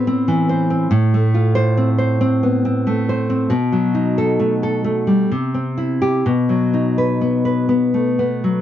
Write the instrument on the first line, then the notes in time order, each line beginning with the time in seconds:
nylon-string guitar
Already playing: A2 B3 C5
0.07 C4
0.28 E3
0.49 C5
0.70 C4
0.91 A2
1.14 A3
1.34 F4
1.55 C5
1.77 C4
1.98 C5
2.21 C4
2.43 B3
2.65 C4
2.87 A3
3.09 C5
3.30 C4
3.50 B2
3.72 F#3
3.95 D#4
4.18 A4
4.40 A3
4.63 A4
4.84 A3
5.07 G3
5.31 C3
5.54 C4
5.78 E4
6.02 G4
6.26 B2
6.49 F#3
6.74 D#4
6.98 B4
7.21 B3
7.45 B4
7.69 B3
7.94 A3
8.19 B3
8.44 F#3